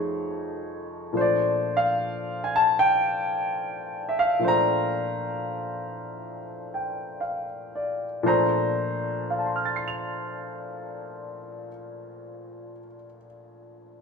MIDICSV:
0, 0, Header, 1, 2, 480
1, 0, Start_track
1, 0, Key_signature, -2, "major"
1, 0, Tempo, 793651
1, 691, Time_signature, 4, 2, 24, 8
1, 1172, Tempo, 817439
1, 2132, Tempo, 864553
1, 3092, Tempo, 924499
1, 3572, Tempo, 977199
1, 4052, Tempo, 1036269
1, 4532, Tempo, 1060071
1, 7147, End_track
2, 0, Start_track
2, 0, Title_t, "Grand piano"
2, 0, Program_c, 0, 0
2, 0, Control_c, 0, 64, 127
2, 0, Note_on_c, 0, 41, 43
2, 0, Note_on_c, 0, 53, 43
2, 0, Note_on_c, 0, 57, 42
2, 0, Note_on_c, 0, 63, 44
2, 0, Note_on_c, 0, 68, 44
2, 0, Note_on_c, 0, 73, 50
2, 678, Note_off_c, 0, 53, 0
2, 682, Note_on_c, 0, 46, 43
2, 683, Note_off_c, 0, 41, 0
2, 684, Note_off_c, 0, 57, 0
2, 688, Note_on_c, 0, 53, 41
2, 690, Note_off_c, 0, 63, 0
2, 693, Note_on_c, 0, 57, 40
2, 694, Note_off_c, 0, 68, 0
2, 697, Note_off_c, 0, 73, 0
2, 697, Control_c, 0, 64, 0
2, 704, Note_on_c, 0, 62, 40
2, 707, Note_on_c, 0, 72, 54
2, 732, Note_on_c, 0, 74, 66
2, 805, Control_c, 0, 64, 127
2, 1046, Note_off_c, 0, 74, 0
2, 1068, Note_on_c, 0, 77, 75
2, 1467, Note_on_c, 0, 80, 56
2, 1473, Note_off_c, 0, 77, 0
2, 1508, Note_off_c, 0, 80, 0
2, 1535, Note_on_c, 0, 81, 88
2, 1672, Note_off_c, 0, 81, 0
2, 1674, Note_on_c, 0, 79, 88
2, 2417, Note_on_c, 0, 76, 59
2, 2427, Note_off_c, 0, 79, 0
2, 2461, Note_off_c, 0, 76, 0
2, 2475, Note_on_c, 0, 77, 77
2, 2579, Note_off_c, 0, 46, 0
2, 2588, Note_on_c, 0, 46, 46
2, 2589, Note_off_c, 0, 53, 0
2, 2597, Note_off_c, 0, 57, 0
2, 2598, Note_on_c, 0, 53, 41
2, 2601, Note_off_c, 0, 62, 0
2, 2605, Note_on_c, 0, 57, 42
2, 2606, Note_off_c, 0, 77, 0
2, 2608, Note_off_c, 0, 72, 0
2, 2610, Note_on_c, 0, 62, 45
2, 2616, Note_on_c, 0, 72, 56
2, 2636, Note_on_c, 0, 82, 80
2, 3825, Note_on_c, 0, 79, 35
2, 4047, Note_off_c, 0, 82, 0
2, 4053, Note_on_c, 0, 77, 40
2, 4161, Note_off_c, 0, 79, 0
2, 4307, Note_on_c, 0, 74, 39
2, 4435, Note_off_c, 0, 77, 0
2, 4521, Note_off_c, 0, 46, 0
2, 4523, Note_off_c, 0, 53, 0
2, 4528, Note_off_c, 0, 57, 0
2, 4528, Note_on_c, 0, 46, 59
2, 4530, Note_on_c, 0, 53, 52
2, 4532, Note_off_c, 0, 62, 0
2, 4535, Note_on_c, 0, 57, 54
2, 4536, Note_off_c, 0, 72, 0
2, 4538, Control_c, 0, 64, 0
2, 4539, Note_on_c, 0, 62, 56
2, 4543, Note_on_c, 0, 72, 65
2, 4548, Note_on_c, 0, 82, 65
2, 4619, Control_c, 0, 64, 127
2, 4644, Note_off_c, 0, 74, 0
2, 5014, Note_on_c, 0, 77, 40
2, 5052, Note_on_c, 0, 81, 36
2, 5085, Note_on_c, 0, 84, 35
2, 5129, Note_on_c, 0, 89, 35
2, 5172, Note_on_c, 0, 93, 31
2, 5220, Note_on_c, 0, 96, 34
2, 5273, Note_on_c, 0, 101, 29
2, 6080, Note_off_c, 0, 46, 0
2, 6082, Note_off_c, 0, 53, 0
2, 6082, Note_off_c, 0, 82, 0
2, 6087, Note_off_c, 0, 57, 0
2, 6091, Note_off_c, 0, 62, 0
2, 6095, Note_off_c, 0, 72, 0
2, 6548, Note_off_c, 0, 77, 0
2, 6586, Note_off_c, 0, 81, 0
2, 6619, Note_off_c, 0, 84, 0
2, 6663, Note_off_c, 0, 89, 0
2, 6706, Note_off_c, 0, 93, 0
2, 6754, Note_off_c, 0, 96, 0
2, 6807, Note_off_c, 0, 101, 0
2, 7147, End_track
0, 0, End_of_file